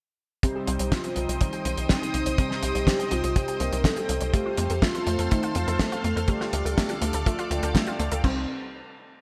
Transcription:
0.43 C3 G3 C4 D#4 G4 C5 D#5 G5 D#6, kick, closed hi-hat
0.56 G4
0.68 C2 C4, closed hi-hat
0.79 C2 C5, closed hi-hat
0.92 C4 F4, kick, snare, closed hi-hat
1.04 G4, closed hi-hat
1.16 C2 C3 G3 C4 D#4 C5, closed hi-hat
1.29 C2 C5, closed hi-hat
1.41 C4 D#4, kick, closed hi-hat
1.53 G4, closed hi-hat
1.65 C2 C4, closed hi-hat
1.77 C2 C5, closed hi-hat
1.89 C4, kick, snare, closed hi-hat
2.02 G4, closed hi-hat
2.14 C2 C4, closed hi-hat
2.26 C2 C5, closed hi-hat
2.38 C3 G3 C4 D#4 G4 C5, kick, closed hi-hat
2.50 G4, snare
2.63 C2 C4, closed hi-hat
2.75 C2 C5, closed hi-hat
2.87 C4, kick, snare, closed hi-hat
2.99 G4, closed hi-hat
3.11 C2 C3 G3 C4 D#4 F4 C5, closed hi-hat
3.24 C2 C5, closed hi-hat
3.36 C4 G4, kick, closed hi-hat
3.48 G4, closed hi-hat
3.60 C2 C4 A#4, closed hi-hat
3.73 C2 C5, closed hi-hat
3.84 C4 A4, kick, snare, closed hi-hat
3.96 G4, closed hi-hat
4.09 C2 C4, closed hi-hat
4.21 C2 C5, closed hi-hat
4.34 A3 C4 F4 G4 A4 C5 F5 C6, kick, closed hi-hat
4.46 F4
4.57 F2 A3, closed hi-hat
4.70 F2 A4, closed hi-hat
4.82 A3 F4, kick, snare, closed hi-hat
4.95 F4, closed hi-hat
5.07 F2 A3 C4 F4 C5, closed hi-hat
5.19 F2 A4, closed hi-hat
5.31 A3 D#4, kick, closed hi-hat
5.43 F4, closed hi-hat
5.55 F2 A3 F4, closed hi-hat
5.68 F2 A4, closed hi-hat
5.79 A3 A4, kick, snare, closed hi-hat
5.92 F4, closed hi-hat
6.04 F2 A3 A4, closed hi-hat
6.16 F2 A4, closed hi-hat
6.28 D3 A3 D4 F4 G4 A4 D5 D6, kick, closed hi-hat
6.41 F4, snare
6.53 D2 A3, closed hi-hat
6.65 D2 A4, closed hi-hat
6.78 A3, kick, snare, closed hi-hat
6.89 F4, closed hi-hat
7.02 D2 D3 A3 D4 F4 D5, closed hi-hat
7.13 D2 A4, closed hi-hat
7.26 A3 F4, kick, closed hi-hat
7.39 F4, closed hi-hat
7.51 D2 D3 A3 D4 F4 G5, closed hi-hat
7.63 D2 A4, closed hi-hat
7.75 A3, kick, snare, closed hi-hat
7.86 F4, closed hi-hat
7.99 D2 A3, closed hi-hat
8.12 D2 A4, closed hi-hat
8.24 C2 G3 C4 D#4 C5, kick, crash

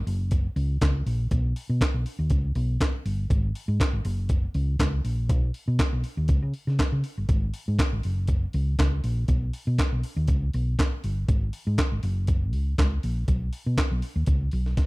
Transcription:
0.07 F#1, open hi-hat
0.31 kick, closed hi-hat
0.56 C#2, open hi-hat
0.81 C#2, kick, snare, clap, closed hi-hat
1.06 A#1, open hi-hat
1.31 B1, kick, closed hi-hat
1.56 open hi-hat
1.69 B2
1.81 kick, snare, clap, closed hi-hat
1.94 B1
2.06 open hi-hat
2.19 D#2
2.30 C#2, kick, closed hi-hat
2.55 B1, open hi-hat
2.81 kick, snare, clap, closed hi-hat
3.05 G1, open hi-hat
3.30 G#1, kick, closed hi-hat
3.55 open hi-hat
3.68 G#2
3.80 kick, snare, clap, closed hi-hat
3.93 G#1
4.05 F#1, open hi-hat
4.29 kick, closed hi-hat
4.54 C#2, open hi-hat
4.79 C#2, kick, snare, clap, closed hi-hat
5.04 A#1, open hi-hat
5.29 B1, kick, closed hi-hat
5.54 open hi-hat
5.68 B2
5.79 kick, snare, clap, closed hi-hat
5.93 B1
6.04 open hi-hat
6.17 D#2
6.28 C#2, kick, closed hi-hat
6.42 C#3
6.54 open hi-hat
6.67 C#3, snare
6.79 kick, snare, clap, closed hi-hat
6.92 C#3
7.04 open hi-hat
7.18 G1
7.29 G#1, kick, closed hi-hat
7.54 open hi-hat
7.68 G#2
7.79 kick, snare, clap, closed hi-hat
7.93 G#1
8.03 F#1, open hi-hat
8.28 kick, closed hi-hat
8.53 C#2, open hi-hat
8.79 C#2, kick, snare, clap, closed hi-hat
9.04 A#1, open hi-hat
9.28 B1, kick, closed hi-hat
9.53 open hi-hat
9.67 B2
9.78 kick, snare, clap, closed hi-hat
9.92 B1
10.04 open hi-hat
10.16 D#2
10.28 C#2, kick, closed hi-hat
10.54 B1, open hi-hat
10.79 kick, snare, clap, closed hi-hat
11.04 G1, open hi-hat
11.28 G#1, kick, closed hi-hat
11.53 open hi-hat
11.67 G#2
11.78 kick, snare, clap, closed hi-hat
11.92 G#1
12.03 F#1, open hi-hat
12.27 kick, closed hi-hat
12.53 C#2, open hi-hat
12.78 C#2, kick, snare, clap, closed hi-hat
13.03 A#1, open hi-hat
13.28 B1, kick, closed hi-hat
13.53 open hi-hat
13.66 B2
13.77 kick, snare, clap, closed hi-hat
13.91 B1
14.02 open hi-hat
14.16 D#2
14.26 C#2, kick, closed hi-hat
14.51 B1, open hi-hat
14.66 snare
14.77 kick, snare, closed hi-hat

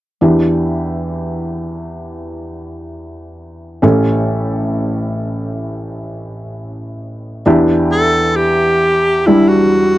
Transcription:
0.21 E2 E3 D4 E4 G4
3.82 A1 A2 C#4 G4 A4
7.46 E2 E3 D4 E4 G4
7.92 A4
8.36 G4
9.26 G3 D4 E4
9.48 F#4

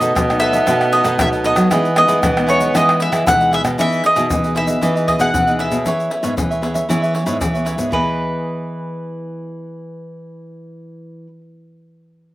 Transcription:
Already playing: B2 A3 B3 C#4 D#4 D#5
0.00 B2 D#4 A4 B4 D#5, pandeiro, shaker
0.15 B2 F#3, pandeiro, tamborim, shaker, surdo
0.30 A3 C#4 D#4, pandeiro, tamborim, shaker
0.40 D#4 A4 B4 D#5 E5, pandeiro
0.53 A4 B4 D#5, pandeiro, shaker
0.67 B2 A3 C#4 D#4 A4 B4 D#5, pandeiro, tamborim, shaker, surdo
0.81 pandeiro, tamborim, shaker
0.92 D#4 A4 B4 D#5, pandeiro
1.04 B2 D#4 A4 B4 D#5, pandeiro, tamborim, shaker
1.19 B2 F#3 A3 C#4 D#4 E5, pandeiro, tamborim, shaker, surdo
1.32 A4 B4 D#5, pandeiro, shaker
1.44 D#4 A4 B4 D#5, pandeiro
1.56 F#3 A4 B4 D#5, pandeiro, tamborim, shaker
1.71 E3 G#3 B3 D#4 E4 G#4 B4 D#5, pandeiro, tamborim, shaker, surdo
1.85 pandeiro, shaker
1.95 G#3 B3 D#4 E4 G#4 B4 D#5, pandeiro, tamborim
2.07 E3 E4 G#4 B4 D#5, pandeiro, shaker
2.23 B2 E3, pandeiro, tamborim, shaker, surdo
2.37 G#3 B3 D#4, pandeiro, tamborim, shaker
2.47 E4 G#4 B4 C#5 D#5, pandeiro, shaker
2.60 G#4 B4 D#5, pandeiro, shaker
2.74 E3 G#3 B3 D#4 E4 G#4 B4 D#5, pandeiro, tamborim, shaker, surdo
2.89 pandeiro, tamborim, shaker
3.00 E4 G#4 B4 D#5 E5, pandeiro
3.12 E3 E4 G#4 B4 D#5, pandeiro, tamborim, shaker
3.26 B2 E3 G#3 B3 D#4 F#5, pandeiro, tamborim, shaker, surdo
3.40 G#4 B4 D#5, pandeiro, shaker
3.51 E4 G#4 B4 D#5 E5, pandeiro
3.64 B2 G#4 B4 D#5, pandeiro, tamborim, shaker
3.78 E3 B3 D#4 E4 G#4 B4 D#5 E5, pandeiro, shaker, surdo
3.93 pandeiro, shaker
4.03 E4 G#4 B4 D#5, pandeiro
4.16 B2 B3 D#4 E4 G#4 B4 D#5, pandeiro, shaker
4.30 B2 E3, pandeiro, shaker, surdo
4.44 G#4 B4 D#5, pandeiro, shaker
4.55 B3 D#4 E4 G#4 B4 D#5 E5, pandeiro
4.67 G#4 B4 D#5, pandeiro, shaker
4.81 E3 B3 D#4 E4 G#4 B4 D#5, pandeiro, shaker, surdo
4.95 G#4 B4 D#5, pandeiro, shaker
5.07 E4 G#4 B4 D#5, pandeiro, surdo
5.19 B2 B3 D#4 E4 G#4 B4 D#5 F#5, pandeiro, shaker
5.33 B2 E3, pandeiro, shaker, surdo
5.47 B3 D#4 G#4 B4 D#5, pandeiro, shaker
5.59 E4 G#4 B4 D#5 E5, pandeiro
5.71 B2 B3 C#4 G#4, pandeiro, shaker
5.85 E3 E4 B4 C#5 E5, pandeiro, shaker, surdo
6.00 pandeiro, shaker
6.10 E4 B4 C#5 E5, pandeiro
6.23 G#2 B3 C#4 E4 G#4 B4 C#5 E5, pandeiro, shaker
6.37 E3, pandeiro, shaker, surdo
6.51 B4 C#5 E5, pandeiro, shaker
6.61 B3 C#4 E4 G#4 B4 C#5 E5, pandeiro
6.74 B4 C#5 E5, pandeiro, shaker
6.88 E3 B3 C#4 E4 G#4 B4 C#5 E5, pandeiro, shaker, surdo
7.02 B4 C#5 E5, pandeiro, shaker
7.14 E4 B4 C#5 E5, pandeiro
7.26 G#2 B3 C#4 E4 G#4 B4 C#5 E5, pandeiro, shaker
7.41 E3, pandeiro, shaker, surdo
7.53 B3 C#4 G#4 B4 C#5 E5, pandeiro, shaker
7.65 E4 B4 C#5 E5, pandeiro, shaker
7.78 G#2 B3 G#4, pandeiro, shaker
7.88 E3 E4 G#4
7.92 B3 B4 D#5, surdo
8.04 G#4

